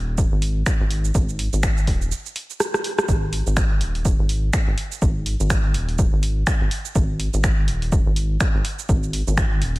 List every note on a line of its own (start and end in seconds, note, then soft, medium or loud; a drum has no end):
0.00 0.27 D#1 medium
0.18 kick loud
0.18 cabasa medium
0.32 0.63 G#1 medium
0.42 open hi-hat medium
0.66 finger snap medium
0.66 kick loud
0.66 cabasa medium
0.81 1.11 G#1 medium
0.91 open hi-hat medium
1.05 cabasa soft
1.15 1.48 G#1 loud
1.15 kick loud
1.15 cabasa medium
1.29 cabasa soft
1.39 open hi-hat medium
1.53 1.89 G#1 loud
1.53 cabasa soft
1.63 finger snap loud
1.63 kick loud
1.63 cabasa medium
1.77 cabasa soft
1.87 2.12 D#1 loud
1.87 kick medium
1.87 open hi-hat medium
2.02 cabasa soft
2.12 cabasa medium
2.26 cabasa soft
2.36 open hi-hat medium
2.50 cabasa soft
2.60 cross-stick medium
2.60 cabasa medium
2.74 cross-stick medium
2.74 cabasa soft
2.84 open hi-hat medium
2.99 cross-stick medium
2.99 cabasa soft
3.08 3.42 G#1 loud
3.08 kick loud
3.08 cabasa medium
3.33 open hi-hat loud
3.47 3.82 G#1 loud
3.47 cabasa soft
3.57 finger snap loud
3.57 kick loud
3.57 cabasa medium
3.81 4.14 D#1 loud
3.81 open hi-hat medium
3.95 open hi-hat soft
4.05 kick loud
4.05 cabasa medium
4.19 4.50 G#1 medium
4.29 open hi-hat medium
4.53 finger snap medium
4.53 kick loud
4.53 cabasa medium
4.68 4.75 G#1 medium
4.78 open hi-hat medium
4.92 cabasa soft
5.02 5.35 G#1 loud
5.02 kick loud
5.02 cabasa medium
5.26 open hi-hat loud
5.40 5.76 G#1 loud
5.40 cabasa soft
5.50 finger snap loud
5.50 kick loud
5.50 cabasa medium
5.74 6.08 D#1 medium
5.74 open hi-hat medium
5.89 open hi-hat soft
5.99 kick loud
5.99 cabasa medium
6.13 6.43 G#1 medium
6.23 open hi-hat medium
6.47 finger snap medium
6.47 kick loud
6.47 cabasa medium
6.61 6.69 G#1 medium
6.71 open hi-hat loud
6.85 cabasa soft
6.95 7.29 G#1 loud
6.95 kick loud
6.95 cabasa medium
7.20 open hi-hat medium
7.34 7.70 G#1 loud
7.34 cabasa soft
7.44 finger snap loud
7.44 kick loud
7.44 cabasa medium
7.68 8.01 D#1 loud
7.68 open hi-hat medium
7.82 open hi-hat soft
7.92 kick loud
7.92 cabasa medium
8.06 8.37 G#1 loud
8.16 open hi-hat loud
8.41 finger snap medium
8.41 kick loud
8.41 cabasa medium
8.55 8.62 G#1 medium
8.65 open hi-hat loud
8.79 cabasa soft
8.89 9.22 G#1 loud
8.89 kick loud
8.89 cabasa medium
9.03 cabasa soft
9.13 open hi-hat loud
9.27 9.63 G#1 loud
9.27 cabasa soft
9.37 finger snap loud
9.37 kick loud
9.37 cabasa medium
9.62 9.79 D#1 loud
9.62 open hi-hat medium
9.76 open hi-hat soft